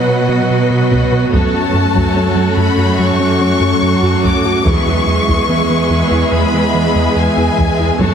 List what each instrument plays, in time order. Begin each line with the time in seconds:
Already playing: cello section B2, french horn section F#3 B3, ambient pad F#3 B3 B4 F#5, viola section F#3 F#4, violin section B4 D#5
0.08 analog synth bass B3, synth arpeggio sound F#4
0.29 analog synth bass B2, synth arpeggio sound B3
0.50 analog synth bass B2
0.70 analog synth bass B2, synth arpeggio sound B4
0.91 analog synth bass B2, synth arpeggio sound B3, taiko
1.12 analog synth bass B2, synth arpeggio sound B4
1.33 analog synth bass F#2, cello section F#2, synth arpeggio sound F#3, ambient pad F#3 C#4 A4 F#5, french horn section F#3 C#4, viola section A3 F#4, violin section A4 C#5 A5, taiko
1.53 analog synth bass F#2, synth arpeggio sound F#4
1.73 analog synth bass F#2
1.95 analog synth bass F#2, synth arpeggio sound F#3, taiko
2.15 analog synth bass F#3, synth arpeggio sound C#4
2.35 analog synth bass F#3, synth arpeggio sound C#4
2.57 analog synth bass F#2, synth arpeggio sound F#3, violin section B5
2.77 analog synth bass F#2, synth arpeggio sound F#4
2.98 analog synth bass F#2, synth arpeggio sound F#3, violin section C#6
3.19 analog synth bass F#3, synth arpeggio sound C#4
3.39 analog synth bass F#3, synth arpeggio sound C#4
3.60 analog synth bass F#2, synth arpeggio sound F#3
3.82 analog synth bass F#2
4.02 analog synth bass F#2, synth arpeggio sound F#4
4.24 analog synth bass F#2, synth arpeggio sound F#3, violin section D6, taiko
4.44 analog synth bass F#2, synth arpeggio sound F#4
4.65 analog synth bass E2, cello section E2, synth arpeggio sound E3, ambient pad G#3 B3 G#4 E5, french horn section G#3 B3, viola section G#3 G#4, violin section B4 E5 C#6, taiko
4.86 analog synth bass E2, synth arpeggio sound E4
5.07 analog synth bass E2
5.28 analog synth bass E2, synth arpeggio sound E3, taiko
5.48 analog synth bass E3, synth arpeggio sound B3
5.70 analog synth bass E3, synth arpeggio sound B3
5.90 analog synth bass E2, synth arpeggio sound E3
6.11 analog synth bass E2, synth arpeggio sound E4
6.31 analog synth bass E2, synth arpeggio sound E3, violin section B5
6.53 analog synth bass E3, synth arpeggio sound B3
6.74 analog synth bass E3, synth arpeggio sound B3
6.95 analog synth bass E2, synth arpeggio sound E3
7.16 analog synth bass E2, violin section G#5
7.37 analog synth bass E2, synth arpeggio sound E4
7.58 analog synth bass E2, synth arpeggio sound E3, taiko
7.79 analog synth bass E2, synth arpeggio sound E4
7.98 analog synth bass F#2, cello section F#2, synth arpeggio sound F#3, french horn section A3 C#4, viola section A3 F#4, violin section A4 C#5 A5, taiko